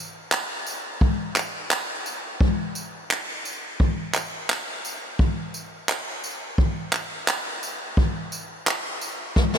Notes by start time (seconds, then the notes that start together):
0.32 clap, tambourine
0.67 tambourine
1.01 kick
1.36 clap, tambourine
1.71 clap, tambourine
2.06 tambourine
2.41 kick
2.75 tambourine
3.11 clap, tambourine
3.45 tambourine
3.80 kick
4.14 clap, tambourine
4.50 clap, tambourine
4.85 tambourine
5.19 kick
5.54 tambourine
5.89 clap, tambourine
6.24 tambourine
6.58 kick
6.93 clap, tambourine
7.28 clap, tambourine
7.63 tambourine
7.97 kick
8.32 tambourine
8.67 clap, tambourine
9.01 tambourine
9.36 kick, snare
9.54 snare